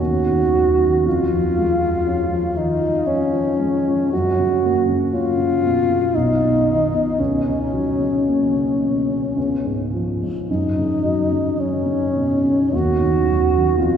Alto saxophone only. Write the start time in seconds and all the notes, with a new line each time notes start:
0.00 F#4
1.07 F4
2.58 D#4
3.07 C#4
4.12 F#4
5.12 F4
6.15 D#4
7.19 C#4
10.48 D#4
11.59 C#4
12.75 F#4
13.78 F4